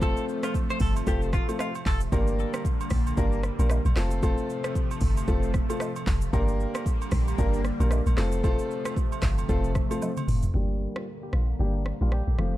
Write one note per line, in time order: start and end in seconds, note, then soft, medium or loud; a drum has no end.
0.00 0.17 F1 loud
0.00 2.10 C3 medium
0.00 2.10 F3 medium
0.00 2.10 A3 medium
0.00 0.51 A3 loud
0.00 0.51 C4 medium
0.00 0.51 F4 medium
0.00 0.51 A4 loud
0.00 0.25 A4 loud
0.00 kick loud
0.00 high agogo medium
0.00 shaker medium
0.17 shaker medium
0.29 shaker medium
0.43 0.53 F4 medium
0.43 cross-stick loud
0.43 high agogo medium
0.43 shaker medium
0.54 kick loud
0.54 shaker medium
0.70 0.79 C5 medium
0.70 high agogo medium
0.70 shaker medium
0.80 1.02 G1 loud
0.80 0.94 A4 medium
0.80 kick medium
0.80 open hi-hat medium
0.80 shaker medium
0.96 high agogo medium
0.96 shaker medium
1.07 1.40 F1 loud
1.07 1.28 A3 loud
1.07 1.28 C4 medium
1.07 1.28 F4 medium
1.07 1.20 G4 medium
1.07 1.28 A4 loud
1.07 kick loud
1.07 shaker medium
1.22 shaker soft
1.33 1.47 F4 medium
1.33 kick loud
1.33 cross-stick loud
1.33 shaker soft
1.48 1.67 A3 medium
1.48 1.67 C4 medium
1.48 1.67 F4 medium
1.48 1.67 A4 medium
1.48 high agogo medium
1.48 shaker medium
1.59 1.73 F4 medium
1.59 cross-stick loud
1.59 low woodblock medium
1.59 shaker medium
1.75 high agogo medium
1.75 shaker medium
1.86 2.07 F1 loud
1.86 1.99 A4 medium
1.86 kick loud
1.86 clap medium
1.86 open hi-hat medium
1.86 shaker medium
2.00 shaker medium
2.12 2.45 G1 loud
2.12 3.95 D3 medium
2.12 3.95 G3 medium
2.12 2.61 A#3 loud
2.12 3.95 A#3 medium
2.12 2.61 D4 medium
2.12 2.61 G4 medium
2.12 2.61 A#4 loud
2.12 kick loud
2.12 high agogo medium
2.12 shaker medium
2.27 shaker medium
2.39 shaker medium
2.54 cross-stick loud
2.54 high agogo medium
2.54 shaker medium
2.65 kick loud
2.65 shaker medium
2.81 high agogo medium
2.81 shaker medium
2.90 3.12 A#1 medium
2.90 kick medium
2.90 cross-stick medium
2.90 open hi-hat medium
2.90 shaker medium
3.07 high agogo medium
3.07 shaker medium
3.17 3.51 G1 loud
3.17 3.38 A#3 loud
3.17 3.38 D4 medium
3.17 3.38 G4 medium
3.17 3.38 A#4 loud
3.17 kick loud
3.17 shaker medium
3.32 shaker soft
3.43 cross-stick loud
3.43 shaker soft
3.59 3.80 A#1 loud
3.59 3.78 A#3 medium
3.59 3.78 D4 medium
3.59 3.78 G4 medium
3.59 3.78 A#4 medium
3.59 high agogo medium
3.59 shaker medium
3.70 cross-stick loud
3.70 low woodblock medium
3.70 shaker medium
3.85 3.94 A#1 medium
3.85 high agogo medium
3.85 shaker medium
3.96 4.38 F1 loud
3.96 6.31 C3 medium
3.96 6.31 F3 medium
3.96 4.21 A3 medium
3.96 6.31 A3 medium
3.96 4.21 C4 medium
3.96 4.21 F4 medium
3.96 4.21 A4 loud
3.96 cross-stick loud
3.96 clap loud
3.96 open hi-hat medium
3.96 shaker medium
4.11 shaker medium
4.22 4.72 A3 loud
4.22 4.72 C4 medium
4.22 4.72 F4 medium
4.22 4.72 A4 loud
4.22 kick loud
4.22 high agogo medium
4.22 shaker medium
4.38 shaker medium
4.50 shaker medium
4.64 cross-stick loud
4.64 high agogo medium
4.64 shaker medium
4.75 kick loud
4.75 shaker medium
4.91 high agogo medium
4.91 shaker medium
5.01 5.23 G1 medium
5.01 kick medium
5.01 open hi-hat medium
5.01 shaker medium
5.17 high agogo medium
5.17 shaker medium
5.28 5.61 F1 loud
5.28 5.49 A3 medium
5.28 5.49 C4 medium
5.28 5.49 F4 medium
5.28 5.49 A4 loud
5.28 kick loud
5.28 shaker medium
5.43 shaker soft
5.54 kick loud
5.54 cross-stick medium
5.54 shaker soft
5.69 5.88 A3 medium
5.69 5.88 C4 medium
5.69 5.88 F4 medium
5.69 5.88 A4 medium
5.69 high agogo medium
5.69 shaker medium
5.80 cross-stick loud
5.80 low woodblock medium
5.80 shaker medium
5.96 high agogo medium
5.96 shaker medium
6.07 6.28 F1 loud
6.07 kick loud
6.07 clap loud
6.07 open hi-hat medium
6.07 shaker medium
6.21 shaker medium
6.33 6.66 G1 loud
6.33 8.16 D3 medium
6.33 8.16 G3 medium
6.33 6.82 A#3 loud
6.33 8.16 A#3 medium
6.33 6.82 D4 medium
6.33 6.82 G4 medium
6.33 6.82 A#4 loud
6.33 kick loud
6.33 high agogo medium
6.33 shaker medium
6.48 shaker medium
6.60 shaker medium
6.75 cross-stick loud
6.75 high agogo medium
6.75 shaker medium
6.86 kick loud
6.86 shaker medium
7.02 high agogo medium
7.02 shaker medium
7.11 7.33 A#1 medium
7.11 kick medium
7.11 cross-stick medium
7.11 open hi-hat medium
7.11 shaker medium
7.28 high agogo medium
7.28 shaker medium
7.38 7.72 G1 loud
7.38 7.59 A#3 medium
7.38 7.59 D4 medium
7.38 7.59 G4 medium
7.38 7.59 A#4 loud
7.38 kick loud
7.38 shaker medium
7.54 shaker soft
7.64 cross-stick medium
7.64 shaker soft
7.80 8.01 A#1 loud
7.80 7.99 A#3 medium
7.80 7.99 D4 medium
7.80 7.99 G4 medium
7.80 7.99 A#4 medium
7.80 high agogo medium
7.80 shaker medium
7.91 cross-stick loud
7.91 low woodblock medium
7.91 shaker medium
8.06 8.15 A#1 medium
8.06 high agogo medium
8.06 shaker medium
8.17 8.59 F1 loud
8.17 10.52 C3 medium
8.17 10.52 F3 medium
8.17 8.42 A3 loud
8.17 10.52 A3 medium
8.17 8.42 C4 medium
8.17 8.42 F4 medium
8.17 8.42 A4 loud
8.17 cross-stick medium
8.17 clap medium
8.17 open hi-hat medium
8.17 shaker medium
8.32 shaker medium
8.43 8.93 A3 loud
8.43 8.93 C4 medium
8.43 8.93 F4 medium
8.43 8.93 A4 loud
8.43 kick loud
8.43 high agogo medium
8.43 shaker medium
8.59 shaker medium
8.71 shaker medium
8.85 cross-stick loud
8.85 high agogo medium
8.85 shaker medium
8.96 kick loud
8.96 shaker medium
9.12 high agogo medium
9.12 shaker medium
9.22 9.44 G1 medium
9.22 kick medium
9.22 cross-stick loud
9.22 clap loud
9.22 open hi-hat medium
9.22 shaker medium
9.38 high agogo medium
9.38 shaker medium
9.49 9.82 F1 loud
9.49 9.70 A3 medium
9.49 9.70 C4 medium
9.49 9.70 F4 medium
9.49 9.70 A4 loud
9.49 kick loud
9.49 shaker medium
9.64 shaker medium
9.75 kick loud
9.75 cross-stick medium
9.75 shaker soft
9.90 10.09 A3 medium
9.90 10.09 C4 medium
9.90 10.09 F4 medium
9.90 10.09 A4 medium
9.90 high agogo medium
9.90 shaker medium
10.02 high tom medium
10.02 low woodblock medium
10.02 shaker medium
10.17 mid tom medium
10.17 high agogo medium
10.17 shaker medium
10.28 10.49 F1 medium
10.28 mid tom loud
10.28 open hi-hat medium
10.28 shaker medium
10.43 floor tom medium
10.43 shaker medium
10.54 10.87 G1 loud
10.54 12.37 D3 medium
10.54 11.03 G3 medium
10.54 12.37 G3 medium
10.54 11.03 A#3 medium
10.54 12.37 A#3 medium
10.54 11.03 D4 medium
10.54 11.04 G4 medium
10.54 10.77 G4 loud
10.96 11.06 F4 medium
10.96 cross-stick loud
11.23 11.32 G4 medium
11.33 11.54 A#1 medium
11.33 11.47 F4 medium
11.33 cross-stick medium
11.59 11.93 G1 loud
11.59 11.80 G3 medium
11.59 11.80 A#3 medium
11.59 11.80 D4 medium
11.59 11.81 G4 loud
11.59 11.73 G4 medium
11.86 cross-stick medium
12.01 12.22 A#1 medium
12.01 12.20 G3 medium
12.01 12.20 A#3 medium
12.01 12.20 D4 medium
12.01 12.11 F4 medium
12.01 12.20 G4 medium
12.12 12.52 G4 medium
12.12 cross-stick medium
12.27 12.36 A#1 medium
12.38 12.57 F1 loud
12.38 12.57 C3 medium
12.38 12.57 F3 medium
12.38 12.57 A3 medium
12.38 12.57 C4 medium
12.38 12.57 F4 loud
12.38 cross-stick medium